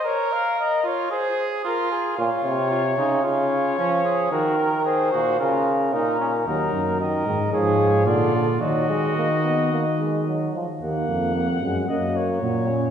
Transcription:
X:1
M:4/4
L:1/8
Q:1/4=112
K:Bbm
V:1 name="Trumpet"
d f e d c z B A | d4 d4 | B2 c2 B2 B2 | [K:Ebm] B2 e2 d2 =d2 |
e6- e z | g4 e d3 |]
V:2 name="Trumpet"
B3 F A2 F2 | F2 F E F2 D A | G B A G F z E D | [K:Ebm] E2 B2 A2 F2 |
G6- G z | z8 |]
V:3 name="Euphonium" clef=bass
z8 | B,, C,2 D, D,2 F,2 | E,3 B,, D,2 B,,2 | [K:Ebm] G,2 E, E, F,2 =D, D, |
G, A, B, C B, A, G, F, | B,2 B, A, B,2 G, D |]
V:4 name="Bass trombone" clef=bass
z8 | z8 | z8 | [K:Ebm] E,, G,,2 A,, A,,2 B,,2 |
E,6- E, z | E,, F,,2 G,, G,,2 B,,2 |]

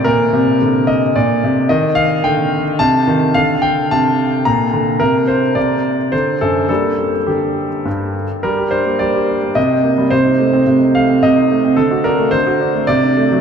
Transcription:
X:1
M:3/4
L:1/16
Q:1/4=108
K:Gm
V:1 name="Grand piano"
B6 e2 d4 | e2 f2 g4 a4 | f2 g2 a4 b4 | B2 c2 d4 c2 A2 |
A4 G6 z2 | B2 c2 d4 e4 | c6 f2 e4 | A2 B2 c4 d4 |]
V:2 name="Grand piano" clef=bass
B,,2 C,2 D,4 B,,2 C,2 | E,4 D,4 C,2 E,2 | D,4 C,4 B,,2 D,2 | C,4 C,4 D,2 ^F,,2 |
[G,B,D]4 D,4 G,,4 | G, G D B, G, G D B, C, C B, G, | C, E A, C C, E A, C C, E A, C | D, ^F D A, D, F D A, C, D A, ^F, |]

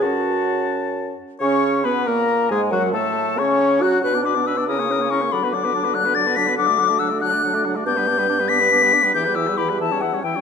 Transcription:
X:1
M:6/8
L:1/16
Q:3/8=92
K:Bdor
V:1 name="Flute"
f8- f2 z2 | c'4 b2 ^a4 g2 | f2 a4 c'4 f'2 | f'2 d'2 e'2 ^d'4 c'2 |
b2 d'4 f'2 a'2 b'2 | [K:Glyd] d'4 e'2 f'4 z2 | g'6 b'6 | g'2 e'2 b2 a2 f2 g2 |]
V:2 name="Oboe"
a8- a2 z2 | c4 B2 ^A4 G2 | F2 A4 c4 f2 | B d B d B d ^A c A c A c |
d B d B d B d B d B d B | [K:Glyd] f d f d f d f d f d f d | d B d B d B d B d B d B | G B G B G B e c e c e c |]
V:3 name="Clarinet"
F8- F2 z2 | C4 B,2 ^A,4 G,2 | F,2 A,4 C4 F2 | F D F D F D E C E C E C |
D F D F D F D F D F D F | [K:Glyd] D F D F D F D F D F D F | D B, D B, D B, D B, D B, D B, | E G E G E G E C E C E C |]
V:4 name="French horn"
C8- C2 z2 | C4 B,2 ^A,4 G,2 | F,2 A,4 C4 F2 | D B, D B, D B, C ^A, C A, C A, |
F, B, F, B, F, B, F, B, F, B, F, B, | [K:Glyd] F, A, F, A, F, A, F, A, F, A, F, A, | B, G, B, G, B, G, B, G, B, G, B, G, | E, G, E, G, E, G, E, G, E, G, E, G, |]
V:5 name="Bassoon" clef=bass
F,,8- F,,2 z2 | C,4 B,,2 ^A,,4 G,,2 | F,,2 A,,4 C,4 F,2 | B,,6 C,6 |
D,12- | [K:Glyd] D,12 | G,,12 | E,,8- E,,2 z2 |]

